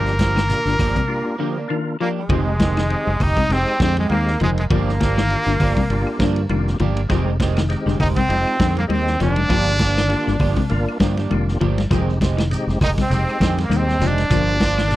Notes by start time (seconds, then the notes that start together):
Already playing: G1 F3 A#3 D4 F4 G4 A#4
0.06 snare, closed hi-hat, shekere
0.19 F3 A#3 D4 G4, kick, snare, closed hi-hat, high conga, shekere
0.36 D#3, snare, closed hi-hat, claves, shekere
0.48 A#3 D4 F4 G4, snare, closed hi-hat, shekere
0.65 G1 D3, snare, closed hi-hat, shekere
0.79 G1 F3 A#3 D4 G4, kick, open hi-hat, low conga, claves, shekere
0.95 C3, kick, closed hi-hat, high conga, shekere
1.08 A#3 D4 F4 G4
1.38 D3 F3 A#3 G4, muted clean electric guitar stroke
1.57 A#3 D4
1.68 D#3 A#3 D4 F4 A#4
2.00 F3 A#3 D4 G4
2.19 G#3
2.29 F1 D#3 F3 G#3 C4 D#4 G4, kick, ride bell, low conga, claves
2.60 D#3 G#3 C4 G4, kick, snare, ride bell, high conga, low conga
2.77 D#3, snare, ride bell, claves
2.89 G#3 C4 D#4 G4, ride bell
3.07 F1, high conga
3.20 F1 D#4 G4, muted clean electric guitar stroke, kick, open hi-hat, low conga, claves
3.36 C3, kick, ride bell, high conga
3.49 F1 G#3 C4 D#4 G4, snare, ride bell
3.69 claves
3.80 F2 D3 G#3 C4 G4, muted clean electric guitar stroke, kick, snare, ride bell, high conga
3.97 G#3 C4 G4, ride bell, high conga
4.09 D#2 G#3 A#3 C4 D#4 G4, ride bell, high conga, claves
4.27 snare
4.40 F1 D#3 F3 G#3 C4, ride bell, low conga
4.58 G#3, ride bell
4.70 G1 F3 A#3 D4 F4 G4, kick, ride bell, low conga, claves
4.89 snare
5.00 F3 A#3 D4 G4, kick, snare, ride bell, high conga, low conga
5.18 D#3, snare, claves
5.30 A#3 D4 F4 G4, ride bell
5.46 G1 D3, snare
5.60 G1 F3 A#3 D4 G4, kick, open hi-hat, low conga, claves
5.76 C3, kick, ride bell, high conga
5.90 G1 A#3 D4 F4 G4, ride bell
6.07 claves
6.19 G2 D3 F3 A#3 D4, kick, snare, ride bell, high conga
6.36 ride bell
6.49 F1 D#3 A#3 D4 F4 G4, ride bell, high conga, claves
6.67 snare
6.79 G1 F3 A#3 D4 G4, muted clean electric guitar stroke, ride bell, low conga
6.97 ride bell
7.09 F1 D#3 F3 G#3 C4 D#4 G4, kick, snare, ride bell, claves
7.40 D#3 G#3 C4 G4, kick, snare, ride bell, high conga
7.57 D#3, snare, ride bell, claves
7.69 G#3 C4 D#4 G4, snare, ride bell
7.86 F1 D3 G#3 C4 G4, snare, high conga
8.00 F1 D#3 G#3 C4 D#4 G4, kick, open hi-hat, low conga, claves
8.16 C3 C4, kick, ride bell, high conga
8.29 F1 G#3 C4 D#4 F4, ride bell
8.47 claves
8.59 F2 D3 D#3 G#3 C4, muted clean electric guitar stroke, kick, snare, ride bell, high conga
8.77 A#3, ride bell, high conga
8.87 D#2 D#3 G#3 C4 D#4 G4, ride bell, high conga, claves
8.93 C4
9.07 snare
9.19 F1 D#3 F3 C4 D4 G4, muted clean electric guitar stroke, snare, ride bell, low conga
9.36 ride bell, high conga
9.48 G1 F3 A#3 D4 F4 G4, kick, snare, ride bell, low conga, claves
9.79 F3 A#3 D4 G4, kick, snare, ride bell, high conga
9.97 D#3, snare, claves
10.08 A#3 D4 F4 G4, snare, ride bell
10.27 G1 D3, snare, high conga
10.39 G1 F3 A#3 D4 G4, kick, open hi-hat, low conga, claves
10.56 C3, kick, ride bell, high conga
10.69 G1 A#3 D4 F4 A#4, ride bell
10.89 claves
11.00 G2 D3 F3 A#3 D4 G4, kick, snare, ride bell, high conga
11.17 A#3 D4 G4, snare, ride bell, high conga
11.31 F1 D#3 A#3 D4 F4 G4, ride bell, high conga, claves
11.48 snare
11.60 G1 F3 A#3 D4 G4, ride bell, low conga
11.78 snare, ride bell, high conga
11.90 F1 D#3 F3 G#3 C4 D#4 G4, kick, ride bell, low conga, claves, shekere
12.10 shekere
12.21 D#3 G#3 C4 G4, kick, snare, ride bell, high conga, low conga, shekere
12.37 D#3, snare, ride bell, claves, shekere
12.51 G#3 C4 D#4 G4, ride bell, shekere
12.67 F1, snare, high conga, shekere
12.81 F1 D#3 G#3 D#4 G4, kick, open hi-hat, low conga, claves, shekere
12.98 C3, kick, snare, ride bell, high conga, shekere
13.02 C4
13.10 F1 G#3 C4 D#4 G4, ride bell, shekere
13.29 claves, shekere
13.40 F2 D3 D#3 G#3 C4 G4, kick, snare, ride bell, high conga, shekere
13.58 A#3, snare, ride bell, high conga, shekere
13.64 A#3
13.69 D#2 D#3 G#3 C4 D#4 G4, ride bell, high conga, claves, shekere
13.76 C4
13.89 snare, shekere
13.99 F1 D#3 F3 G#3 C4 G4, ride bell, low conga, shekere
14.05 D4
14.18 snare, ride bell, shekere
14.30 G1 F3 A#3 D4 F4 G4, kick, ride bell, low conga, claves, shekere
14.48 shekere
14.60 F3 A#3 D4 F4, kick, snare, ride bell, high conga, low conga, shekere
14.78 D#3, snare, claves, shekere
14.88 A#3 D4 F4 G4, snare, ride bell, shekere